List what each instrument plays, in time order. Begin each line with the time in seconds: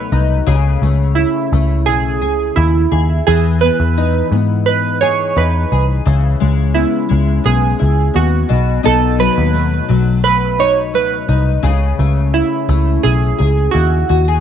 Already playing: nylon-string guitar B2 F#3 A3 D#4, synth keys B4
0.12 picked electric bass C2, nylon-string guitar D#4
0.47 picked electric bass C#2, nylon-string guitar C#3 G#4
0.82 picked electric bass C#2, nylon-string guitar A3
1.15 synth keys E4, nylon-string guitar E4
1.52 picked electric bass C#2, nylon-string guitar A3
1.86 picked electric bass B1, nylon-string guitar E4, synth keys G#4
2.21 picked electric bass C#2, nylon-string guitar G#4
2.56 picked electric bass D#2, synth keys E4, nylon-string guitar E4
2.92 picked electric bass D#2, nylon-string guitar G#4
3.27 picked electric bass E2, nylon-string guitar E3 G#4, synth keys G#4
3.61 nylon-string guitar B3, synth keys B4
3.80 picked electric bass E2
3.97 nylon-string guitar D#4
4.32 picked electric bass G#2, nylon-string guitar B3
4.66 nylon-string guitar D#4, synth keys B4
5.01 nylon-string guitar G#4, synth keys C#5
5.36 picked electric bass E2, nylon-string guitar D#4, synth keys B4
5.72 picked electric bass C2, nylon-string guitar G#4
6.06 picked electric bass C#2, nylon-string guitar C#3 E4
6.40 picked electric bass C#2, nylon-string guitar G#3
6.74 nylon-string guitar B3, synth keys E4
7.09 picked electric bass C#2, nylon-string guitar G#3
7.44 picked electric bass B1, nylon-string guitar B3, synth keys G#4
7.79 picked electric bass C#2, nylon-string guitar E4
8.14 picked electric bass D#2, nylon-string guitar B3, synth keys F#4
8.49 picked electric bass B1, nylon-string guitar B2
8.83 picked electric bass B1, nylon-string guitar B2 D#4, synth keys A4
9.18 nylon-string guitar F#3, synth keys B4
9.38 picked electric bass D#2
9.54 nylon-string guitar A3
9.88 picked electric bass B1, nylon-string guitar F#3
10.23 nylon-string guitar A3, synth keys B4
10.59 nylon-string guitar D#4, synth keys C#5
10.94 picked electric bass C#2, nylon-string guitar A3, synth keys B4
11.28 picked electric bass C2, nylon-string guitar D#4
11.63 picked electric bass C#2, nylon-string guitar C#3 G#4
11.99 picked electric bass C#2, nylon-string guitar A3
12.34 synth keys E4, nylon-string guitar E4
12.69 picked electric bass C#2, nylon-string guitar A3
13.03 picked electric bass B1, nylon-string guitar E4, synth keys G#4
13.38 picked electric bass C#2, nylon-string guitar G#4
13.71 picked electric bass D#2, nylon-string guitar E4, synth keys F#4
14.09 picked electric bass D#2, nylon-string guitar F#4
14.28 nylon-string guitar G#4